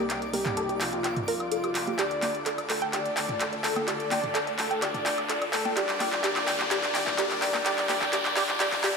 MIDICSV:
0, 0, Header, 1, 8, 480
1, 0, Start_track
1, 0, Tempo, 472441
1, 101, Time_signature, 4, 2, 24, 8
1, 9113, End_track
2, 0, Start_track
2, 0, Title_t, "Synth texture"
2, 0, Program_c, 0, 99
2, 0, Note_on_c, 0, 74, 74
2, 0, Note_on_c, 0, 86, 79
2, 9113, Note_off_c, 0, 74, 0
2, 9113, Note_off_c, 0, 86, 0
2, 9113, End_track
3, 0, Start_track
3, 0, Title_t, "Analog synth lead"
3, 0, Program_c, 1, 81
3, 0, Note_on_c, 1, 67, 99
3, 247, Note_off_c, 1, 67, 0
3, 340, Note_on_c, 1, 67, 88
3, 821, Note_on_c, 1, 65, 87
3, 836, Note_off_c, 1, 67, 0
3, 1254, Note_off_c, 1, 65, 0
3, 1301, Note_on_c, 1, 65, 102
3, 2015, Note_off_c, 1, 65, 0
3, 2021, Note_on_c, 1, 74, 101
3, 2647, Note_off_c, 1, 74, 0
3, 2741, Note_on_c, 1, 69, 82
3, 2962, Note_off_c, 1, 69, 0
3, 2980, Note_on_c, 1, 74, 91
3, 3607, Note_off_c, 1, 74, 0
3, 3700, Note_on_c, 1, 69, 85
3, 3921, Note_off_c, 1, 69, 0
3, 3940, Note_on_c, 1, 74, 94
3, 4567, Note_off_c, 1, 74, 0
3, 4660, Note_on_c, 1, 69, 88
3, 4882, Note_off_c, 1, 69, 0
3, 4900, Note_on_c, 1, 74, 97
3, 5527, Note_off_c, 1, 74, 0
3, 5621, Note_on_c, 1, 69, 91
3, 5842, Note_off_c, 1, 69, 0
3, 5861, Note_on_c, 1, 74, 104
3, 6322, Note_off_c, 1, 74, 0
3, 6341, Note_on_c, 1, 74, 101
3, 6802, Note_off_c, 1, 74, 0
3, 6820, Note_on_c, 1, 74, 106
3, 7281, Note_off_c, 1, 74, 0
3, 7300, Note_on_c, 1, 74, 107
3, 7762, Note_off_c, 1, 74, 0
3, 7780, Note_on_c, 1, 74, 105
3, 8002, Note_off_c, 1, 74, 0
3, 8020, Note_on_c, 1, 74, 107
3, 8241, Note_off_c, 1, 74, 0
3, 8259, Note_on_c, 1, 74, 107
3, 8481, Note_off_c, 1, 74, 0
3, 8500, Note_on_c, 1, 74, 102
3, 8721, Note_off_c, 1, 74, 0
3, 8740, Note_on_c, 1, 74, 105
3, 8962, Note_off_c, 1, 74, 0
3, 8980, Note_on_c, 1, 74, 107
3, 9113, Note_off_c, 1, 74, 0
3, 9113, End_track
4, 0, Start_track
4, 0, Title_t, "Synth arpeggio sound"
4, 0, Program_c, 2, 84
4, 100, Note_on_c, 2, 79, 85
4, 134, Note_off_c, 2, 79, 0
4, 340, Note_on_c, 2, 70, 97
4, 397, Note_off_c, 2, 70, 0
4, 580, Note_on_c, 2, 69, 81
4, 637, Note_off_c, 2, 69, 0
4, 704, Note_on_c, 2, 67, 71
4, 758, Note_off_c, 2, 67, 0
4, 945, Note_on_c, 2, 67, 74
4, 998, Note_off_c, 2, 67, 0
4, 1061, Note_on_c, 2, 79, 80
4, 1095, Note_off_c, 2, 79, 0
4, 1301, Note_on_c, 2, 70, 101
4, 1358, Note_off_c, 2, 70, 0
4, 1541, Note_on_c, 2, 69, 77
4, 1597, Note_off_c, 2, 69, 0
4, 1664, Note_on_c, 2, 67, 77
4, 1718, Note_off_c, 2, 67, 0
4, 1905, Note_on_c, 2, 67, 74
4, 1958, Note_off_c, 2, 67, 0
4, 2021, Note_on_c, 2, 67, 95
4, 2077, Note_off_c, 2, 67, 0
4, 2261, Note_on_c, 2, 79, 69
4, 2346, Note_off_c, 2, 79, 0
4, 2501, Note_on_c, 2, 69, 71
4, 2557, Note_off_c, 2, 69, 0
4, 2624, Note_on_c, 2, 74, 67
4, 2656, Note_off_c, 2, 74, 0
4, 2864, Note_on_c, 2, 79, 94
4, 2918, Note_off_c, 2, 79, 0
4, 2980, Note_on_c, 2, 67, 94
4, 3037, Note_off_c, 2, 67, 0
4, 3221, Note_on_c, 2, 79, 76
4, 3306, Note_off_c, 2, 79, 0
4, 3461, Note_on_c, 2, 69, 71
4, 3517, Note_off_c, 2, 69, 0
4, 3584, Note_on_c, 2, 74, 74
4, 3616, Note_off_c, 2, 74, 0
4, 3823, Note_on_c, 2, 79, 91
4, 3877, Note_off_c, 2, 79, 0
4, 3940, Note_on_c, 2, 67, 102
4, 3997, Note_off_c, 2, 67, 0
4, 4180, Note_on_c, 2, 79, 70
4, 4266, Note_off_c, 2, 79, 0
4, 4420, Note_on_c, 2, 69, 82
4, 4477, Note_off_c, 2, 69, 0
4, 4544, Note_on_c, 2, 74, 69
4, 4576, Note_off_c, 2, 74, 0
4, 4783, Note_on_c, 2, 79, 101
4, 4837, Note_off_c, 2, 79, 0
4, 4900, Note_on_c, 2, 67, 96
4, 4957, Note_off_c, 2, 67, 0
4, 5140, Note_on_c, 2, 79, 74
4, 5226, Note_off_c, 2, 79, 0
4, 5380, Note_on_c, 2, 69, 74
4, 5437, Note_off_c, 2, 69, 0
4, 5503, Note_on_c, 2, 74, 75
4, 5536, Note_off_c, 2, 74, 0
4, 5743, Note_on_c, 2, 79, 95
4, 5797, Note_off_c, 2, 79, 0
4, 5860, Note_on_c, 2, 67, 105
4, 5917, Note_off_c, 2, 67, 0
4, 6100, Note_on_c, 2, 79, 76
4, 6186, Note_off_c, 2, 79, 0
4, 6340, Note_on_c, 2, 67, 102
4, 6397, Note_off_c, 2, 67, 0
4, 6580, Note_on_c, 2, 79, 76
4, 6665, Note_off_c, 2, 79, 0
4, 6820, Note_on_c, 2, 67, 101
4, 6877, Note_off_c, 2, 67, 0
4, 7060, Note_on_c, 2, 79, 76
4, 7146, Note_off_c, 2, 79, 0
4, 7300, Note_on_c, 2, 67, 94
4, 7357, Note_off_c, 2, 67, 0
4, 7540, Note_on_c, 2, 79, 76
4, 7626, Note_off_c, 2, 79, 0
4, 7781, Note_on_c, 2, 67, 110
4, 7837, Note_off_c, 2, 67, 0
4, 8021, Note_on_c, 2, 67, 101
4, 8078, Note_off_c, 2, 67, 0
4, 8261, Note_on_c, 2, 67, 109
4, 8317, Note_off_c, 2, 67, 0
4, 8501, Note_on_c, 2, 67, 100
4, 8557, Note_off_c, 2, 67, 0
4, 8740, Note_on_c, 2, 67, 105
4, 8797, Note_off_c, 2, 67, 0
4, 8981, Note_on_c, 2, 67, 107
4, 9037, Note_off_c, 2, 67, 0
4, 9113, End_track
5, 0, Start_track
5, 0, Title_t, "String section"
5, 0, Program_c, 3, 48
5, 0, Note_on_c, 3, 36, 83
5, 0, Note_on_c, 3, 48, 74
5, 0, Note_on_c, 3, 58, 74
5, 0, Note_on_c, 3, 63, 73
5, 0, Note_on_c, 3, 74, 85
5, 1980, Note_off_c, 3, 74, 0
5, 1981, Note_off_c, 3, 36, 0
5, 1981, Note_off_c, 3, 48, 0
5, 1981, Note_off_c, 3, 58, 0
5, 1981, Note_off_c, 3, 63, 0
5, 2019, Note_on_c, 3, 38, 81
5, 2019, Note_on_c, 3, 65, 74
5, 2020, Note_on_c, 3, 50, 75
5, 2020, Note_on_c, 3, 57, 71
5, 2020, Note_on_c, 3, 69, 89
5, 5821, Note_off_c, 3, 38, 0
5, 5822, Note_off_c, 3, 50, 0
5, 5822, Note_off_c, 3, 57, 0
5, 5822, Note_off_c, 3, 69, 0
5, 5859, Note_on_c, 3, 70, 87
5, 5860, Note_on_c, 3, 39, 87
5, 5860, Note_on_c, 3, 51, 75
5, 5860, Note_on_c, 3, 55, 75
5, 9113, Note_off_c, 3, 39, 0
5, 9113, Note_off_c, 3, 51, 0
5, 9113, Note_off_c, 3, 55, 0
5, 9113, Note_off_c, 3, 65, 0
5, 9113, Note_off_c, 3, 70, 0
5, 9113, End_track
6, 0, Start_track
6, 0, Title_t, "Riser"
6, 0, Program_c, 4, 103
6, 0, Note_on_c, 4, 60, 76
6, 9113, Note_off_c, 4, 60, 0
6, 9113, End_track
7, 0, Start_track
7, 0, Title_t, "Swell"
7, 0, Program_c, 5, 103
7, 8740, Note_on_c, 5, 60, 83
7, 9113, Note_off_c, 5, 60, 0
7, 9113, End_track
8, 0, Start_track
8, 0, Title_t, "Drums"
8, 100, Note_on_c, 9, 39, 63
8, 100, Note_on_c, 9, 42, 78
8, 202, Note_off_c, 9, 39, 0
8, 202, Note_off_c, 9, 42, 0
8, 224, Note_on_c, 9, 42, 35
8, 325, Note_off_c, 9, 42, 0
8, 340, Note_on_c, 9, 46, 106
8, 340, Note_on_c, 9, 63, 64
8, 441, Note_off_c, 9, 63, 0
8, 442, Note_off_c, 9, 46, 0
8, 464, Note_on_c, 9, 39, 59
8, 464, Note_on_c, 9, 42, 35
8, 464, Note_on_c, 9, 45, 88
8, 565, Note_off_c, 9, 39, 0
8, 565, Note_off_c, 9, 42, 0
8, 565, Note_off_c, 9, 45, 0
8, 580, Note_on_c, 9, 42, 78
8, 681, Note_off_c, 9, 42, 0
8, 704, Note_on_c, 9, 42, 36
8, 805, Note_off_c, 9, 42, 0
8, 819, Note_on_c, 9, 39, 66
8, 819, Note_on_c, 9, 46, 100
8, 921, Note_off_c, 9, 39, 0
8, 921, Note_off_c, 9, 46, 0
8, 943, Note_on_c, 9, 42, 34
8, 1045, Note_off_c, 9, 42, 0
8, 1060, Note_on_c, 9, 39, 70
8, 1060, Note_on_c, 9, 42, 88
8, 1162, Note_off_c, 9, 39, 0
8, 1162, Note_off_c, 9, 42, 0
8, 1184, Note_on_c, 9, 42, 37
8, 1184, Note_on_c, 9, 45, 81
8, 1285, Note_off_c, 9, 42, 0
8, 1286, Note_off_c, 9, 45, 0
8, 1300, Note_on_c, 9, 46, 106
8, 1401, Note_off_c, 9, 46, 0
8, 1424, Note_on_c, 9, 42, 35
8, 1424, Note_on_c, 9, 76, 58
8, 1525, Note_off_c, 9, 42, 0
8, 1526, Note_off_c, 9, 76, 0
8, 1540, Note_on_c, 9, 42, 80
8, 1641, Note_off_c, 9, 42, 0
8, 1664, Note_on_c, 9, 42, 36
8, 1664, Note_on_c, 9, 76, 60
8, 1765, Note_off_c, 9, 42, 0
8, 1766, Note_off_c, 9, 76, 0
8, 1779, Note_on_c, 9, 39, 66
8, 1779, Note_on_c, 9, 46, 108
8, 1881, Note_off_c, 9, 39, 0
8, 1881, Note_off_c, 9, 46, 0
8, 1904, Note_on_c, 9, 42, 36
8, 1904, Note_on_c, 9, 63, 63
8, 2005, Note_off_c, 9, 42, 0
8, 2006, Note_off_c, 9, 63, 0
8, 2020, Note_on_c, 9, 39, 71
8, 2020, Note_on_c, 9, 42, 88
8, 2121, Note_off_c, 9, 39, 0
8, 2121, Note_off_c, 9, 42, 0
8, 2144, Note_on_c, 9, 42, 36
8, 2245, Note_off_c, 9, 42, 0
8, 2260, Note_on_c, 9, 39, 70
8, 2260, Note_on_c, 9, 46, 97
8, 2260, Note_on_c, 9, 63, 65
8, 2361, Note_off_c, 9, 39, 0
8, 2361, Note_off_c, 9, 46, 0
8, 2362, Note_off_c, 9, 63, 0
8, 2383, Note_on_c, 9, 42, 34
8, 2485, Note_off_c, 9, 42, 0
8, 2500, Note_on_c, 9, 39, 69
8, 2500, Note_on_c, 9, 42, 85
8, 2601, Note_off_c, 9, 39, 0
8, 2601, Note_off_c, 9, 42, 0
8, 2624, Note_on_c, 9, 42, 38
8, 2624, Note_on_c, 9, 76, 56
8, 2725, Note_off_c, 9, 42, 0
8, 2726, Note_off_c, 9, 76, 0
8, 2740, Note_on_c, 9, 39, 74
8, 2740, Note_on_c, 9, 46, 98
8, 2841, Note_off_c, 9, 39, 0
8, 2841, Note_off_c, 9, 46, 0
8, 2864, Note_on_c, 9, 42, 37
8, 2965, Note_off_c, 9, 42, 0
8, 2980, Note_on_c, 9, 39, 78
8, 2980, Note_on_c, 9, 42, 91
8, 3082, Note_off_c, 9, 39, 0
8, 3082, Note_off_c, 9, 42, 0
8, 3104, Note_on_c, 9, 42, 37
8, 3206, Note_off_c, 9, 42, 0
8, 3220, Note_on_c, 9, 39, 78
8, 3220, Note_on_c, 9, 46, 104
8, 3322, Note_off_c, 9, 39, 0
8, 3322, Note_off_c, 9, 46, 0
8, 3343, Note_on_c, 9, 42, 34
8, 3344, Note_on_c, 9, 45, 83
8, 3445, Note_off_c, 9, 42, 0
8, 3445, Note_off_c, 9, 45, 0
8, 3460, Note_on_c, 9, 39, 80
8, 3460, Note_on_c, 9, 42, 89
8, 3561, Note_off_c, 9, 39, 0
8, 3561, Note_off_c, 9, 42, 0
8, 3584, Note_on_c, 9, 42, 36
8, 3685, Note_off_c, 9, 42, 0
8, 3700, Note_on_c, 9, 39, 79
8, 3700, Note_on_c, 9, 46, 102
8, 3802, Note_off_c, 9, 39, 0
8, 3802, Note_off_c, 9, 46, 0
8, 3824, Note_on_c, 9, 42, 35
8, 3824, Note_on_c, 9, 63, 61
8, 3824, Note_on_c, 9, 76, 57
8, 3925, Note_off_c, 9, 42, 0
8, 3925, Note_off_c, 9, 63, 0
8, 3925, Note_off_c, 9, 76, 0
8, 3940, Note_on_c, 9, 39, 80
8, 3940, Note_on_c, 9, 42, 88
8, 4042, Note_off_c, 9, 39, 0
8, 4042, Note_off_c, 9, 42, 0
8, 4064, Note_on_c, 9, 42, 39
8, 4165, Note_off_c, 9, 42, 0
8, 4180, Note_on_c, 9, 39, 80
8, 4180, Note_on_c, 9, 46, 98
8, 4180, Note_on_c, 9, 63, 66
8, 4281, Note_off_c, 9, 39, 0
8, 4281, Note_off_c, 9, 46, 0
8, 4282, Note_off_c, 9, 63, 0
8, 4303, Note_on_c, 9, 45, 81
8, 4304, Note_on_c, 9, 42, 37
8, 4405, Note_off_c, 9, 45, 0
8, 4406, Note_off_c, 9, 42, 0
8, 4420, Note_on_c, 9, 39, 80
8, 4420, Note_on_c, 9, 42, 89
8, 4522, Note_off_c, 9, 39, 0
8, 4522, Note_off_c, 9, 42, 0
8, 4544, Note_on_c, 9, 42, 39
8, 4646, Note_off_c, 9, 42, 0
8, 4660, Note_on_c, 9, 39, 80
8, 4660, Note_on_c, 9, 46, 94
8, 4762, Note_off_c, 9, 39, 0
8, 4762, Note_off_c, 9, 46, 0
8, 4784, Note_on_c, 9, 42, 38
8, 4886, Note_off_c, 9, 42, 0
8, 4900, Note_on_c, 9, 39, 91
8, 4900, Note_on_c, 9, 42, 95
8, 5001, Note_off_c, 9, 39, 0
8, 5001, Note_off_c, 9, 42, 0
8, 5024, Note_on_c, 9, 42, 41
8, 5024, Note_on_c, 9, 45, 80
8, 5125, Note_off_c, 9, 45, 0
8, 5126, Note_off_c, 9, 42, 0
8, 5140, Note_on_c, 9, 39, 89
8, 5140, Note_on_c, 9, 46, 106
8, 5242, Note_off_c, 9, 39, 0
8, 5242, Note_off_c, 9, 46, 0
8, 5263, Note_on_c, 9, 76, 60
8, 5264, Note_on_c, 9, 42, 38
8, 5365, Note_off_c, 9, 76, 0
8, 5366, Note_off_c, 9, 42, 0
8, 5380, Note_on_c, 9, 39, 87
8, 5380, Note_on_c, 9, 42, 94
8, 5482, Note_off_c, 9, 39, 0
8, 5482, Note_off_c, 9, 42, 0
8, 5503, Note_on_c, 9, 42, 39
8, 5503, Note_on_c, 9, 76, 64
8, 5605, Note_off_c, 9, 42, 0
8, 5605, Note_off_c, 9, 76, 0
8, 5619, Note_on_c, 9, 39, 86
8, 5619, Note_on_c, 9, 46, 93
8, 5721, Note_off_c, 9, 39, 0
8, 5721, Note_off_c, 9, 46, 0
8, 5743, Note_on_c, 9, 42, 36
8, 5744, Note_on_c, 9, 63, 66
8, 5845, Note_off_c, 9, 42, 0
8, 5845, Note_off_c, 9, 63, 0
8, 5860, Note_on_c, 9, 39, 92
8, 5860, Note_on_c, 9, 42, 96
8, 5961, Note_off_c, 9, 39, 0
8, 5961, Note_off_c, 9, 42, 0
8, 5983, Note_on_c, 9, 39, 78
8, 5983, Note_on_c, 9, 42, 39
8, 6085, Note_off_c, 9, 39, 0
8, 6085, Note_off_c, 9, 42, 0
8, 6100, Note_on_c, 9, 39, 89
8, 6100, Note_on_c, 9, 46, 96
8, 6100, Note_on_c, 9, 63, 68
8, 6201, Note_off_c, 9, 39, 0
8, 6201, Note_off_c, 9, 46, 0
8, 6201, Note_off_c, 9, 63, 0
8, 6223, Note_on_c, 9, 39, 84
8, 6223, Note_on_c, 9, 42, 40
8, 6325, Note_off_c, 9, 39, 0
8, 6325, Note_off_c, 9, 42, 0
8, 6339, Note_on_c, 9, 39, 94
8, 6339, Note_on_c, 9, 42, 93
8, 6441, Note_off_c, 9, 39, 0
8, 6441, Note_off_c, 9, 42, 0
8, 6463, Note_on_c, 9, 39, 84
8, 6463, Note_on_c, 9, 42, 42
8, 6464, Note_on_c, 9, 76, 62
8, 6565, Note_off_c, 9, 39, 0
8, 6565, Note_off_c, 9, 42, 0
8, 6565, Note_off_c, 9, 76, 0
8, 6580, Note_on_c, 9, 39, 90
8, 6580, Note_on_c, 9, 46, 94
8, 6681, Note_off_c, 9, 39, 0
8, 6681, Note_off_c, 9, 46, 0
8, 6703, Note_on_c, 9, 39, 85
8, 6703, Note_on_c, 9, 42, 39
8, 6805, Note_off_c, 9, 39, 0
8, 6805, Note_off_c, 9, 42, 0
8, 6819, Note_on_c, 9, 39, 95
8, 6819, Note_on_c, 9, 42, 104
8, 6921, Note_off_c, 9, 39, 0
8, 6921, Note_off_c, 9, 42, 0
8, 6944, Note_on_c, 9, 39, 80
8, 6944, Note_on_c, 9, 42, 40
8, 7045, Note_off_c, 9, 39, 0
8, 7045, Note_off_c, 9, 42, 0
8, 7059, Note_on_c, 9, 39, 98
8, 7059, Note_on_c, 9, 46, 101
8, 7161, Note_off_c, 9, 39, 0
8, 7161, Note_off_c, 9, 46, 0
8, 7183, Note_on_c, 9, 45, 80
8, 7184, Note_on_c, 9, 39, 79
8, 7184, Note_on_c, 9, 42, 41
8, 7285, Note_off_c, 9, 39, 0
8, 7285, Note_off_c, 9, 42, 0
8, 7285, Note_off_c, 9, 45, 0
8, 7300, Note_on_c, 9, 39, 103
8, 7300, Note_on_c, 9, 42, 95
8, 7401, Note_off_c, 9, 39, 0
8, 7401, Note_off_c, 9, 42, 0
8, 7424, Note_on_c, 9, 39, 85
8, 7424, Note_on_c, 9, 42, 41
8, 7525, Note_off_c, 9, 39, 0
8, 7525, Note_off_c, 9, 42, 0
8, 7540, Note_on_c, 9, 39, 95
8, 7540, Note_on_c, 9, 46, 96
8, 7641, Note_off_c, 9, 39, 0
8, 7641, Note_off_c, 9, 46, 0
8, 7663, Note_on_c, 9, 63, 66
8, 7663, Note_on_c, 9, 76, 62
8, 7664, Note_on_c, 9, 39, 85
8, 7664, Note_on_c, 9, 42, 40
8, 7765, Note_off_c, 9, 39, 0
8, 7765, Note_off_c, 9, 42, 0
8, 7765, Note_off_c, 9, 63, 0
8, 7765, Note_off_c, 9, 76, 0
8, 7780, Note_on_c, 9, 39, 96
8, 7780, Note_on_c, 9, 42, 101
8, 7882, Note_off_c, 9, 39, 0
8, 7882, Note_off_c, 9, 42, 0
8, 7904, Note_on_c, 9, 39, 87
8, 7904, Note_on_c, 9, 42, 40
8, 8005, Note_off_c, 9, 39, 0
8, 8005, Note_off_c, 9, 42, 0
8, 8020, Note_on_c, 9, 39, 102
8, 8020, Note_on_c, 9, 46, 99
8, 8020, Note_on_c, 9, 63, 72
8, 8121, Note_off_c, 9, 39, 0
8, 8121, Note_off_c, 9, 46, 0
8, 8121, Note_off_c, 9, 63, 0
8, 8144, Note_on_c, 9, 39, 92
8, 8144, Note_on_c, 9, 42, 39
8, 8144, Note_on_c, 9, 45, 84
8, 8245, Note_off_c, 9, 39, 0
8, 8245, Note_off_c, 9, 42, 0
8, 8245, Note_off_c, 9, 45, 0
8, 8260, Note_on_c, 9, 39, 100
8, 8260, Note_on_c, 9, 42, 95
8, 8361, Note_off_c, 9, 39, 0
8, 8361, Note_off_c, 9, 42, 0
8, 8384, Note_on_c, 9, 39, 94
8, 8384, Note_on_c, 9, 42, 42
8, 8384, Note_on_c, 9, 76, 62
8, 8485, Note_off_c, 9, 39, 0
8, 8485, Note_off_c, 9, 42, 0
8, 8485, Note_off_c, 9, 76, 0
8, 8499, Note_on_c, 9, 39, 105
8, 8499, Note_on_c, 9, 46, 104
8, 8601, Note_off_c, 9, 39, 0
8, 8601, Note_off_c, 9, 46, 0
8, 8623, Note_on_c, 9, 39, 89
8, 8623, Note_on_c, 9, 42, 42
8, 8725, Note_off_c, 9, 39, 0
8, 8725, Note_off_c, 9, 42, 0
8, 8740, Note_on_c, 9, 39, 109
8, 8740, Note_on_c, 9, 42, 103
8, 8841, Note_off_c, 9, 39, 0
8, 8841, Note_off_c, 9, 42, 0
8, 8863, Note_on_c, 9, 45, 78
8, 8864, Note_on_c, 9, 39, 94
8, 8864, Note_on_c, 9, 42, 43
8, 8965, Note_off_c, 9, 39, 0
8, 8965, Note_off_c, 9, 42, 0
8, 8965, Note_off_c, 9, 45, 0
8, 8980, Note_on_c, 9, 39, 112
8, 8980, Note_on_c, 9, 46, 109
8, 9081, Note_off_c, 9, 39, 0
8, 9081, Note_off_c, 9, 46, 0
8, 9113, End_track
0, 0, End_of_file